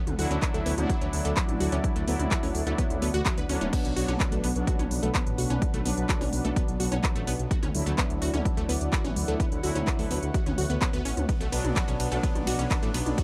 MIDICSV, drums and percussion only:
0, 0, Header, 1, 2, 480
1, 0, Start_track
1, 0, Tempo, 472441
1, 1868, Time_signature, 4, 2, 24, 8
1, 13446, End_track
2, 0, Start_track
2, 0, Title_t, "Drums"
2, 72, Note_on_c, 9, 42, 46
2, 72, Note_on_c, 9, 47, 99
2, 173, Note_off_c, 9, 42, 0
2, 173, Note_off_c, 9, 47, 0
2, 190, Note_on_c, 9, 46, 105
2, 292, Note_off_c, 9, 46, 0
2, 312, Note_on_c, 9, 42, 48
2, 413, Note_off_c, 9, 42, 0
2, 429, Note_on_c, 9, 36, 116
2, 431, Note_on_c, 9, 39, 97
2, 431, Note_on_c, 9, 42, 65
2, 530, Note_off_c, 9, 36, 0
2, 532, Note_off_c, 9, 39, 0
2, 532, Note_off_c, 9, 42, 0
2, 552, Note_on_c, 9, 42, 46
2, 653, Note_off_c, 9, 42, 0
2, 670, Note_on_c, 9, 46, 100
2, 772, Note_off_c, 9, 46, 0
2, 791, Note_on_c, 9, 42, 46
2, 791, Note_on_c, 9, 47, 93
2, 892, Note_off_c, 9, 42, 0
2, 892, Note_off_c, 9, 47, 0
2, 909, Note_on_c, 9, 36, 106
2, 910, Note_on_c, 9, 42, 71
2, 1010, Note_off_c, 9, 36, 0
2, 1011, Note_off_c, 9, 42, 0
2, 1030, Note_on_c, 9, 42, 45
2, 1132, Note_off_c, 9, 42, 0
2, 1149, Note_on_c, 9, 46, 102
2, 1251, Note_off_c, 9, 46, 0
2, 1270, Note_on_c, 9, 42, 50
2, 1371, Note_off_c, 9, 42, 0
2, 1389, Note_on_c, 9, 36, 121
2, 1389, Note_on_c, 9, 39, 110
2, 1389, Note_on_c, 9, 42, 71
2, 1490, Note_off_c, 9, 36, 0
2, 1490, Note_off_c, 9, 39, 0
2, 1490, Note_off_c, 9, 42, 0
2, 1510, Note_on_c, 9, 42, 46
2, 1510, Note_on_c, 9, 47, 97
2, 1611, Note_off_c, 9, 42, 0
2, 1611, Note_off_c, 9, 47, 0
2, 1630, Note_on_c, 9, 46, 104
2, 1731, Note_off_c, 9, 46, 0
2, 1749, Note_on_c, 9, 42, 45
2, 1851, Note_off_c, 9, 42, 0
2, 1868, Note_on_c, 9, 36, 112
2, 1869, Note_on_c, 9, 42, 70
2, 1970, Note_off_c, 9, 36, 0
2, 1971, Note_off_c, 9, 42, 0
2, 1990, Note_on_c, 9, 42, 49
2, 2091, Note_off_c, 9, 42, 0
2, 2109, Note_on_c, 9, 46, 103
2, 2210, Note_off_c, 9, 46, 0
2, 2230, Note_on_c, 9, 42, 49
2, 2230, Note_on_c, 9, 47, 99
2, 2332, Note_off_c, 9, 42, 0
2, 2332, Note_off_c, 9, 47, 0
2, 2349, Note_on_c, 9, 36, 114
2, 2350, Note_on_c, 9, 39, 110
2, 2350, Note_on_c, 9, 42, 71
2, 2450, Note_off_c, 9, 36, 0
2, 2451, Note_off_c, 9, 39, 0
2, 2451, Note_off_c, 9, 42, 0
2, 2469, Note_on_c, 9, 46, 62
2, 2571, Note_off_c, 9, 46, 0
2, 2588, Note_on_c, 9, 46, 106
2, 2690, Note_off_c, 9, 46, 0
2, 2710, Note_on_c, 9, 42, 46
2, 2811, Note_off_c, 9, 42, 0
2, 2828, Note_on_c, 9, 36, 112
2, 2828, Note_on_c, 9, 42, 75
2, 2930, Note_off_c, 9, 36, 0
2, 2930, Note_off_c, 9, 42, 0
2, 2949, Note_on_c, 9, 42, 48
2, 2949, Note_on_c, 9, 47, 87
2, 3051, Note_off_c, 9, 42, 0
2, 3051, Note_off_c, 9, 47, 0
2, 3069, Note_on_c, 9, 46, 103
2, 3170, Note_off_c, 9, 46, 0
2, 3190, Note_on_c, 9, 42, 52
2, 3291, Note_off_c, 9, 42, 0
2, 3308, Note_on_c, 9, 36, 127
2, 3309, Note_on_c, 9, 39, 107
2, 3309, Note_on_c, 9, 42, 72
2, 3410, Note_off_c, 9, 36, 0
2, 3411, Note_off_c, 9, 39, 0
2, 3411, Note_off_c, 9, 42, 0
2, 3429, Note_on_c, 9, 42, 49
2, 3531, Note_off_c, 9, 42, 0
2, 3549, Note_on_c, 9, 46, 106
2, 3651, Note_off_c, 9, 46, 0
2, 3670, Note_on_c, 9, 42, 46
2, 3670, Note_on_c, 9, 47, 90
2, 3771, Note_off_c, 9, 42, 0
2, 3771, Note_off_c, 9, 47, 0
2, 3788, Note_on_c, 9, 36, 113
2, 3789, Note_on_c, 9, 42, 71
2, 3789, Note_on_c, 9, 49, 79
2, 3890, Note_off_c, 9, 36, 0
2, 3890, Note_off_c, 9, 42, 0
2, 3890, Note_off_c, 9, 49, 0
2, 3910, Note_on_c, 9, 42, 49
2, 4011, Note_off_c, 9, 42, 0
2, 4029, Note_on_c, 9, 46, 108
2, 4131, Note_off_c, 9, 46, 0
2, 4150, Note_on_c, 9, 42, 49
2, 4150, Note_on_c, 9, 47, 89
2, 4251, Note_off_c, 9, 42, 0
2, 4251, Note_off_c, 9, 47, 0
2, 4268, Note_on_c, 9, 36, 122
2, 4269, Note_on_c, 9, 39, 104
2, 4269, Note_on_c, 9, 42, 68
2, 4370, Note_off_c, 9, 36, 0
2, 4370, Note_off_c, 9, 39, 0
2, 4370, Note_off_c, 9, 42, 0
2, 4389, Note_on_c, 9, 42, 48
2, 4491, Note_off_c, 9, 42, 0
2, 4508, Note_on_c, 9, 46, 115
2, 4610, Note_off_c, 9, 46, 0
2, 4630, Note_on_c, 9, 42, 45
2, 4731, Note_off_c, 9, 42, 0
2, 4748, Note_on_c, 9, 36, 124
2, 4749, Note_on_c, 9, 42, 72
2, 4850, Note_off_c, 9, 36, 0
2, 4850, Note_off_c, 9, 42, 0
2, 4870, Note_on_c, 9, 42, 48
2, 4870, Note_on_c, 9, 47, 90
2, 4971, Note_off_c, 9, 42, 0
2, 4971, Note_off_c, 9, 47, 0
2, 4989, Note_on_c, 9, 46, 105
2, 5091, Note_off_c, 9, 46, 0
2, 5110, Note_on_c, 9, 42, 49
2, 5212, Note_off_c, 9, 42, 0
2, 5228, Note_on_c, 9, 36, 127
2, 5230, Note_on_c, 9, 39, 109
2, 5230, Note_on_c, 9, 42, 72
2, 5330, Note_off_c, 9, 36, 0
2, 5331, Note_off_c, 9, 39, 0
2, 5331, Note_off_c, 9, 42, 0
2, 5350, Note_on_c, 9, 42, 50
2, 5452, Note_off_c, 9, 42, 0
2, 5469, Note_on_c, 9, 46, 114
2, 5571, Note_off_c, 9, 46, 0
2, 5590, Note_on_c, 9, 42, 44
2, 5590, Note_on_c, 9, 47, 91
2, 5692, Note_off_c, 9, 42, 0
2, 5692, Note_off_c, 9, 47, 0
2, 5708, Note_on_c, 9, 36, 124
2, 5709, Note_on_c, 9, 42, 67
2, 5810, Note_off_c, 9, 36, 0
2, 5810, Note_off_c, 9, 42, 0
2, 5830, Note_on_c, 9, 42, 48
2, 5931, Note_off_c, 9, 42, 0
2, 5948, Note_on_c, 9, 46, 116
2, 6050, Note_off_c, 9, 46, 0
2, 6070, Note_on_c, 9, 42, 49
2, 6171, Note_off_c, 9, 42, 0
2, 6188, Note_on_c, 9, 36, 127
2, 6188, Note_on_c, 9, 39, 110
2, 6188, Note_on_c, 9, 42, 71
2, 6290, Note_off_c, 9, 36, 0
2, 6290, Note_off_c, 9, 39, 0
2, 6290, Note_off_c, 9, 42, 0
2, 6310, Note_on_c, 9, 46, 65
2, 6310, Note_on_c, 9, 47, 87
2, 6411, Note_off_c, 9, 46, 0
2, 6411, Note_off_c, 9, 47, 0
2, 6429, Note_on_c, 9, 46, 113
2, 6530, Note_off_c, 9, 46, 0
2, 6550, Note_on_c, 9, 42, 48
2, 6652, Note_off_c, 9, 42, 0
2, 6669, Note_on_c, 9, 36, 127
2, 6669, Note_on_c, 9, 42, 70
2, 6770, Note_off_c, 9, 36, 0
2, 6771, Note_off_c, 9, 42, 0
2, 6790, Note_on_c, 9, 42, 46
2, 6892, Note_off_c, 9, 42, 0
2, 6909, Note_on_c, 9, 46, 115
2, 7010, Note_off_c, 9, 46, 0
2, 7029, Note_on_c, 9, 42, 48
2, 7029, Note_on_c, 9, 47, 93
2, 7131, Note_off_c, 9, 42, 0
2, 7131, Note_off_c, 9, 47, 0
2, 7149, Note_on_c, 9, 36, 127
2, 7149, Note_on_c, 9, 39, 119
2, 7149, Note_on_c, 9, 42, 73
2, 7250, Note_off_c, 9, 36, 0
2, 7251, Note_off_c, 9, 39, 0
2, 7251, Note_off_c, 9, 42, 0
2, 7271, Note_on_c, 9, 42, 48
2, 7372, Note_off_c, 9, 42, 0
2, 7390, Note_on_c, 9, 46, 117
2, 7492, Note_off_c, 9, 46, 0
2, 7512, Note_on_c, 9, 42, 46
2, 7613, Note_off_c, 9, 42, 0
2, 7629, Note_on_c, 9, 36, 122
2, 7630, Note_on_c, 9, 42, 67
2, 7730, Note_off_c, 9, 36, 0
2, 7732, Note_off_c, 9, 42, 0
2, 7751, Note_on_c, 9, 42, 45
2, 7751, Note_on_c, 9, 47, 96
2, 7852, Note_off_c, 9, 42, 0
2, 7852, Note_off_c, 9, 47, 0
2, 7870, Note_on_c, 9, 46, 119
2, 7971, Note_off_c, 9, 46, 0
2, 7992, Note_on_c, 9, 42, 46
2, 8093, Note_off_c, 9, 42, 0
2, 8109, Note_on_c, 9, 36, 124
2, 8111, Note_on_c, 9, 39, 106
2, 8111, Note_on_c, 9, 42, 68
2, 8210, Note_off_c, 9, 36, 0
2, 8212, Note_off_c, 9, 39, 0
2, 8212, Note_off_c, 9, 42, 0
2, 8231, Note_on_c, 9, 42, 45
2, 8332, Note_off_c, 9, 42, 0
2, 8349, Note_on_c, 9, 46, 114
2, 8451, Note_off_c, 9, 46, 0
2, 8470, Note_on_c, 9, 42, 45
2, 8470, Note_on_c, 9, 47, 93
2, 8572, Note_off_c, 9, 42, 0
2, 8572, Note_off_c, 9, 47, 0
2, 8589, Note_on_c, 9, 36, 127
2, 8590, Note_on_c, 9, 42, 66
2, 8690, Note_off_c, 9, 36, 0
2, 8692, Note_off_c, 9, 42, 0
2, 8711, Note_on_c, 9, 42, 46
2, 8812, Note_off_c, 9, 42, 0
2, 8830, Note_on_c, 9, 46, 113
2, 8932, Note_off_c, 9, 46, 0
2, 8952, Note_on_c, 9, 42, 46
2, 9053, Note_off_c, 9, 42, 0
2, 9069, Note_on_c, 9, 36, 127
2, 9071, Note_on_c, 9, 39, 105
2, 9071, Note_on_c, 9, 42, 64
2, 9170, Note_off_c, 9, 36, 0
2, 9172, Note_off_c, 9, 39, 0
2, 9172, Note_off_c, 9, 42, 0
2, 9191, Note_on_c, 9, 42, 48
2, 9191, Note_on_c, 9, 47, 95
2, 9293, Note_off_c, 9, 42, 0
2, 9293, Note_off_c, 9, 47, 0
2, 9310, Note_on_c, 9, 46, 112
2, 9412, Note_off_c, 9, 46, 0
2, 9431, Note_on_c, 9, 42, 44
2, 9533, Note_off_c, 9, 42, 0
2, 9549, Note_on_c, 9, 36, 124
2, 9550, Note_on_c, 9, 42, 63
2, 9650, Note_off_c, 9, 36, 0
2, 9652, Note_off_c, 9, 42, 0
2, 9671, Note_on_c, 9, 42, 46
2, 9773, Note_off_c, 9, 42, 0
2, 9790, Note_on_c, 9, 46, 112
2, 9891, Note_off_c, 9, 46, 0
2, 9911, Note_on_c, 9, 42, 45
2, 9911, Note_on_c, 9, 47, 98
2, 10013, Note_off_c, 9, 42, 0
2, 10013, Note_off_c, 9, 47, 0
2, 10029, Note_on_c, 9, 36, 124
2, 10030, Note_on_c, 9, 39, 101
2, 10030, Note_on_c, 9, 42, 64
2, 10130, Note_off_c, 9, 36, 0
2, 10131, Note_off_c, 9, 39, 0
2, 10131, Note_off_c, 9, 42, 0
2, 10150, Note_on_c, 9, 46, 66
2, 10252, Note_off_c, 9, 46, 0
2, 10268, Note_on_c, 9, 46, 118
2, 10370, Note_off_c, 9, 46, 0
2, 10390, Note_on_c, 9, 42, 42
2, 10491, Note_off_c, 9, 42, 0
2, 10509, Note_on_c, 9, 36, 127
2, 10509, Note_on_c, 9, 42, 67
2, 10610, Note_off_c, 9, 36, 0
2, 10610, Note_off_c, 9, 42, 0
2, 10630, Note_on_c, 9, 42, 43
2, 10630, Note_on_c, 9, 47, 99
2, 10732, Note_off_c, 9, 42, 0
2, 10732, Note_off_c, 9, 47, 0
2, 10749, Note_on_c, 9, 46, 109
2, 10851, Note_off_c, 9, 46, 0
2, 10870, Note_on_c, 9, 42, 45
2, 10972, Note_off_c, 9, 42, 0
2, 10989, Note_on_c, 9, 36, 127
2, 10990, Note_on_c, 9, 39, 108
2, 10990, Note_on_c, 9, 42, 62
2, 11090, Note_off_c, 9, 36, 0
2, 11091, Note_off_c, 9, 39, 0
2, 11091, Note_off_c, 9, 42, 0
2, 11111, Note_on_c, 9, 42, 45
2, 11212, Note_off_c, 9, 42, 0
2, 11229, Note_on_c, 9, 46, 114
2, 11331, Note_off_c, 9, 46, 0
2, 11350, Note_on_c, 9, 42, 45
2, 11350, Note_on_c, 9, 47, 92
2, 11452, Note_off_c, 9, 42, 0
2, 11452, Note_off_c, 9, 47, 0
2, 11469, Note_on_c, 9, 36, 117
2, 11470, Note_on_c, 9, 42, 66
2, 11470, Note_on_c, 9, 51, 53
2, 11570, Note_off_c, 9, 36, 0
2, 11571, Note_off_c, 9, 42, 0
2, 11571, Note_off_c, 9, 51, 0
2, 11590, Note_on_c, 9, 42, 45
2, 11692, Note_off_c, 9, 42, 0
2, 11710, Note_on_c, 9, 46, 113
2, 11710, Note_on_c, 9, 51, 79
2, 11811, Note_off_c, 9, 46, 0
2, 11811, Note_off_c, 9, 51, 0
2, 11831, Note_on_c, 9, 42, 46
2, 11831, Note_on_c, 9, 47, 97
2, 11933, Note_off_c, 9, 42, 0
2, 11933, Note_off_c, 9, 47, 0
2, 11949, Note_on_c, 9, 36, 122
2, 11950, Note_on_c, 9, 39, 99
2, 11950, Note_on_c, 9, 42, 63
2, 11950, Note_on_c, 9, 51, 51
2, 12051, Note_off_c, 9, 36, 0
2, 12052, Note_off_c, 9, 39, 0
2, 12052, Note_off_c, 9, 42, 0
2, 12052, Note_off_c, 9, 51, 0
2, 12072, Note_on_c, 9, 42, 46
2, 12174, Note_off_c, 9, 42, 0
2, 12191, Note_on_c, 9, 46, 107
2, 12191, Note_on_c, 9, 51, 77
2, 12292, Note_off_c, 9, 46, 0
2, 12292, Note_off_c, 9, 51, 0
2, 12312, Note_on_c, 9, 42, 44
2, 12414, Note_off_c, 9, 42, 0
2, 12429, Note_on_c, 9, 36, 116
2, 12431, Note_on_c, 9, 42, 66
2, 12431, Note_on_c, 9, 51, 54
2, 12531, Note_off_c, 9, 36, 0
2, 12533, Note_off_c, 9, 42, 0
2, 12533, Note_off_c, 9, 51, 0
2, 12552, Note_on_c, 9, 42, 44
2, 12552, Note_on_c, 9, 47, 100
2, 12654, Note_off_c, 9, 42, 0
2, 12654, Note_off_c, 9, 47, 0
2, 12671, Note_on_c, 9, 46, 108
2, 12671, Note_on_c, 9, 51, 79
2, 12773, Note_off_c, 9, 46, 0
2, 12773, Note_off_c, 9, 51, 0
2, 12792, Note_on_c, 9, 42, 47
2, 12894, Note_off_c, 9, 42, 0
2, 12910, Note_on_c, 9, 36, 125
2, 12912, Note_on_c, 9, 39, 105
2, 12912, Note_on_c, 9, 42, 67
2, 12912, Note_on_c, 9, 51, 53
2, 13011, Note_off_c, 9, 36, 0
2, 13013, Note_off_c, 9, 39, 0
2, 13013, Note_off_c, 9, 42, 0
2, 13013, Note_off_c, 9, 51, 0
2, 13032, Note_on_c, 9, 42, 44
2, 13134, Note_off_c, 9, 42, 0
2, 13151, Note_on_c, 9, 46, 109
2, 13151, Note_on_c, 9, 51, 80
2, 13253, Note_off_c, 9, 46, 0
2, 13253, Note_off_c, 9, 51, 0
2, 13272, Note_on_c, 9, 42, 44
2, 13272, Note_on_c, 9, 47, 97
2, 13373, Note_off_c, 9, 42, 0
2, 13373, Note_off_c, 9, 47, 0
2, 13390, Note_on_c, 9, 36, 113
2, 13392, Note_on_c, 9, 42, 69
2, 13392, Note_on_c, 9, 51, 56
2, 13446, Note_off_c, 9, 36, 0
2, 13446, Note_off_c, 9, 42, 0
2, 13446, Note_off_c, 9, 51, 0
2, 13446, End_track
0, 0, End_of_file